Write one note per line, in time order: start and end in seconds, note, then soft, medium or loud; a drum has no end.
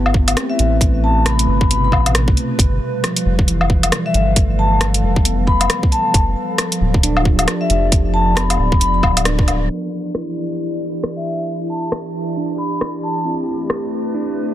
0.00 0.36 G1 loud
0.00 2.58 A3 medium
0.00 1.42 B3 medium
0.00 0.31 E4 medium
0.00 3.44 G4 medium
0.00 7.08 B4 medium
0.06 low woodblock medium
0.14 kick loud
0.28 closed hi-hat medium
0.28 low woodblock soft
0.37 1.86 C4 medium
0.37 cross-stick loud
0.37 closed hi-hat medium
0.50 0.73 E5 medium
0.55 2.01 E4 medium
0.59 1.47 A1 loud
0.59 closed hi-hat soft
0.81 2.31 A3 medium
0.81 kick loud
0.81 closed hi-hat medium
1.04 1.27 A5 medium
1.26 2.75 C3 medium
1.26 1.68 B5 medium
1.26 cross-stick loud
1.26 closed hi-hat medium
1.39 closed hi-hat medium
1.48 1.94 G1 loud
1.61 kick loud
1.71 2.78 B2 medium
1.71 1.79 B5 medium
1.71 closed hi-hat medium
1.84 1.90 B5 medium
1.92 2.35 A1 medium
1.92 kick medium
1.92 low woodblock medium
2.06 closed hi-hat medium
2.06 low woodblock soft
2.15 cross-stick loud
2.15 closed hi-hat medium
2.28 kick loud
2.37 closed hi-hat soft
2.58 2.80 G1 loud
2.58 6.14 G3 medium
2.58 kick loud
2.58 closed hi-hat medium
2.68 9.70 F5 medium
3.04 4.53 F3 medium
3.04 cross-stick loud
3.04 closed hi-hat medium
3.16 closed hi-hat medium
3.26 3.91 F1 loud
3.35 11.14 A4 medium
3.35 kick loud
3.48 4.97 E3 medium
3.48 closed hi-hat medium
3.61 low woodblock medium
3.70 kick loud
3.83 closed hi-hat medium
3.83 low woodblock soft
3.92 cross-stick loud
3.92 closed hi-hat medium
4.06 4.29 E5 medium
4.14 5.02 G1 loud
4.14 closed hi-hat soft
4.36 5.86 A3 medium
4.36 kick loud
4.36 closed hi-hat medium
4.59 4.82 A5 medium
4.81 cross-stick loud
4.81 closed hi-hat medium
4.94 closed hi-hat medium
5.03 5.69 F1 loud
5.16 kick loud
5.25 6.32 B3 medium
5.25 closed hi-hat medium
5.47 5.56 B5 medium
5.47 kick medium
5.60 5.66 B5 medium
5.60 closed hi-hat medium
5.60 low woodblock soft
5.70 cross-stick loud
5.70 closed hi-hat medium
5.83 kick loud
5.92 6.20 A5 medium
5.92 closed hi-hat soft
6.14 6.35 F1 loud
6.14 9.70 F3 medium
6.14 kick loud
6.14 closed hi-hat medium
6.57 13.85 D5 medium
6.57 cross-stick loud
6.57 closed hi-hat medium
6.72 closed hi-hat medium
6.81 7.46 D1 loud
6.94 kick loud
7.03 8.53 D4 medium
7.03 closed hi-hat medium
7.17 low woodblock medium
7.22 8.68 F4 medium
7.22 kick loud
7.36 8.80 G4 medium
7.36 closed hi-hat medium
7.36 low woodblock medium
7.48 cross-stick loud
7.48 closed hi-hat medium
7.61 7.84 E5 medium
7.70 8.58 F1 loud
7.70 closed hi-hat soft
7.92 kick loud
7.92 closed hi-hat medium
8.14 8.38 A5 medium
8.36 9.86 B3 medium
8.36 8.79 B5 medium
8.36 cross-stick loud
8.36 closed hi-hat medium
8.50 closed hi-hat medium
8.50 low woodblock medium
8.59 8.80 D1 loud
8.72 kick loud
8.80 9.02 F1 medium
8.80 8.89 B5 medium
8.80 closed hi-hat medium
8.94 9.00 B5 medium
9.03 9.69 D1 loud
9.03 kick medium
9.03 low woodblock medium
9.17 closed hi-hat medium
9.17 low woodblock medium
9.25 9.89 D4 medium
9.25 cross-stick loud
9.25 closed hi-hat medium
9.39 kick loud
9.48 closed hi-hat soft
9.48 low woodblock soft
9.69 13.25 E3 medium
9.77 14.01 E4 medium
9.86 14.54 G4 medium
10.15 11.64 E4 medium
10.15 cross-stick medium
11.04 cross-stick medium
11.16 11.40 E5 medium
11.70 11.93 A5 medium
11.92 cross-stick loud
12.37 13.44 D4 medium
12.56 13.42 G4 soft
12.56 12.67 B5 medium
12.72 12.78 B5 medium
12.81 cross-stick loud
13.03 13.31 A5 medium
13.25 14.54 A3 medium
13.25 14.54 C4 soft
13.25 14.54 E4 medium
13.39 14.54 B4 medium
13.43 14.54 G4 soft
13.70 cross-stick loud
14.14 14.54 D4 medium